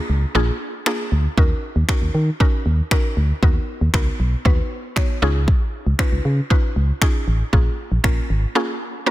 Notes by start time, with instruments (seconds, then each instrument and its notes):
Already playing: synth pluck A#3 D4 F4 G#4
0.10 fm bass C#2
0.35 fm bass A#1, synth pluck A#3 D4 F4 G#4
0.86 synth pluck A#3 D4 F4 G#4, finger snap
1.12 fm bass D2
1.37 fm bass D#2, synth pluck C#4 D#4 F#4 A#4, kick
1.76 fm bass D#2
1.89 synth pluck C#4 D#4 F#4 A#4, finger snap, kick
2.02 fm bass D#2
2.14 fm bass D#3
2.40 synth pluck C#4 D#4 F#4 A#4, kick
2.66 fm bass D#2
2.91 synth pluck C#4 D#4 F#4 A#4, finger snap, kick
3.17 fm bass D2
3.43 fm bass D#2, synth pluck B3 D#4 F#4 A#4, kick
3.81 fm bass D#2
3.94 fm bass C#2, synth pluck B3 D#4 F#4 A#4, finger snap, kick
4.20 fm bass B1
4.45 fm bass D#2, synth pluck B3 D#4 F#4 B4, kick
4.96 synth pluck B3 D#4 F#4 C#5, finger snap, kick
5.22 fm bass C#2, synth pluck C#4 D#4 F4 G#4
5.48 kick
5.86 fm bass C#2
5.99 synth pluck C#4 D#4 F4 B4, finger snap, kick
6.12 fm bass C#2
6.25 fm bass C#3
6.50 synth pluck C#4 D#4 F4 B4, kick
6.76 fm bass C#2
7.02 synth pluck C#4 D#4 F4 G#4, finger snap, kick
7.28 fm bass A1
7.53 fm bass A#1, synth pluck A#3 C#4 F4 G#4, kick
7.92 fm bass A#1
8.04 fm bass A#1, synth pluck A#3 C#4 F4 A#4, finger snap, kick
8.30 fm bass G#1
8.55 synth pluck A#3 C#4 F4 G#4
9.06 synth pluck A#3 C#4 F4 A#4